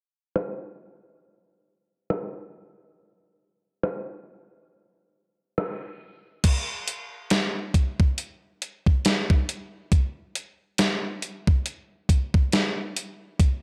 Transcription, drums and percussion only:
0.36 cross-stick loud
2.10 cross-stick loud
3.83 cross-stick loud
5.58 cross-stick loud
6.44 kick loud
6.44 closed hi-hat medium
6.44 crash loud
6.88 closed hi-hat medium
7.30 snare loud
7.30 closed hi-hat medium
7.74 kick medium
7.74 closed hi-hat medium
8.00 kick medium
8.18 closed hi-hat medium
8.62 closed hi-hat medium
8.86 kick medium
9.05 snare loud
9.05 closed hi-hat medium
9.30 kick medium
9.49 closed hi-hat medium
9.92 kick loud
9.92 closed hi-hat medium
10.35 closed hi-hat medium
10.78 snare loud
10.78 closed hi-hat medium
11.22 closed hi-hat medium
11.47 kick medium
11.66 closed hi-hat medium
12.09 kick medium
12.09 closed hi-hat medium
12.34 kick medium
12.52 snare loud
12.52 closed hi-hat medium
12.97 closed hi-hat medium
13.39 kick loud
13.39 closed hi-hat medium

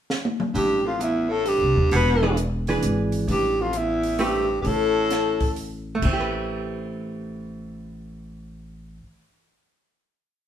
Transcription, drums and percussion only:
0.10 snare medium
0.25 high tom medium
0.40 mid tom medium
0.55 open hi-hat soft
1.01 closed hi-hat soft
1.46 open hi-hat soft
1.91 open hi-hat soft
2.37 closed hi-hat soft
2.67 open hi-hat soft
2.83 closed hi-hat medium
3.12 open hi-hat soft
3.28 open hi-hat soft
3.73 closed hi-hat soft
4.03 open hi-hat soft
4.19 open hi-hat soft
4.65 open hi-hat soft
5.10 snare soft
5.10 closed hi-hat soft
5.41 kick medium
5.41 open hi-hat soft
5.56 open hi-hat soft
6.02 kick medium
6.02 crash medium

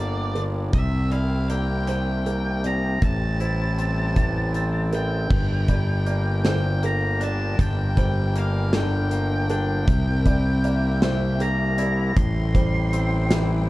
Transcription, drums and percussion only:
0.35 closed hi-hat soft
0.73 kick medium
0.73 closed hi-hat medium
1.12 closed hi-hat soft
1.50 closed hi-hat medium
1.87 closed hi-hat medium
2.26 closed hi-hat soft
2.64 closed hi-hat soft
3.02 kick medium
3.02 closed hi-hat medium
3.40 closed hi-hat soft
3.78 closed hi-hat soft
4.16 kick medium
4.16 closed hi-hat medium
4.54 closed hi-hat soft
4.93 closed hi-hat soft
5.30 kick medium
5.30 crash medium
5.68 kick medium
5.68 closed hi-hat soft
6.07 closed hi-hat soft
6.45 snare medium
6.45 closed hi-hat medium
6.83 closed hi-hat medium
7.21 closed hi-hat soft
7.59 kick medium
7.59 closed hi-hat medium
7.97 kick medium
7.97 closed hi-hat medium
8.36 closed hi-hat medium
8.73 snare medium
8.73 closed hi-hat medium
9.11 closed hi-hat soft
9.50 closed hi-hat soft
9.88 kick medium
9.88 closed hi-hat medium
10.26 kick medium
10.26 closed hi-hat soft
10.64 closed hi-hat medium
11.02 snare medium
11.02 closed hi-hat medium
11.40 closed hi-hat soft
11.78 closed hi-hat medium
12.17 kick medium
12.17 closed hi-hat medium
12.55 kick medium
12.55 closed hi-hat soft
12.93 closed hi-hat medium
13.31 snare medium
13.31 closed hi-hat medium

